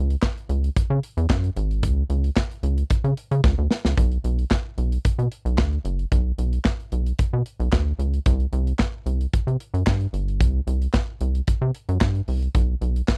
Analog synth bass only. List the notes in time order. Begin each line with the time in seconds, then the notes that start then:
Already playing: C#2
0.49 C#2
0.76 C#3
0.90 C#3
1.17 E2
1.30 F#2
1.56 G#1
1.83 C#2
2.10 C#2
2.63 C#2
3.04 C#3
3.31 C#3
3.44 C#2
3.58 D2
3.85 C#2
3.97 B1
4.24 B1
4.78 B1
5.05 B2
5.19 B2
5.45 B1
5.58 D2
5.85 F#1
6.12 B1
6.38 B1
6.92 B1
7.19 B2
7.33 B2
7.60 B1
7.73 D2
7.99 C#2
8.26 C2
8.53 C2
9.06 C2
9.33 C3
9.47 C3
9.74 F#2
9.87 G2
10.13 G1
10.40 C2
10.67 C2
11.21 C2
11.48 C3
11.62 C3
11.89 F#2
12.01 G2
12.28 C2
12.55 B1
12.81 B1